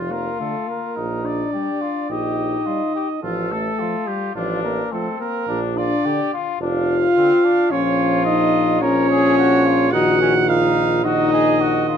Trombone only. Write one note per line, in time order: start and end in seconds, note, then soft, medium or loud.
0.40 0.56 D3 soft
1.53 1.69 G3 soft
2.66 2.82 G3 soft
3.80 3.96 F3 medium
4.92 5.08 F3 medium
6.05 6.21 D3 medium
7.16 7.32 D3 medium
7.72 8.78 F3 medium
8.82 9.91 F3 medium
9.93 11.02 D#3 medium
11.05 11.97 D#3 medium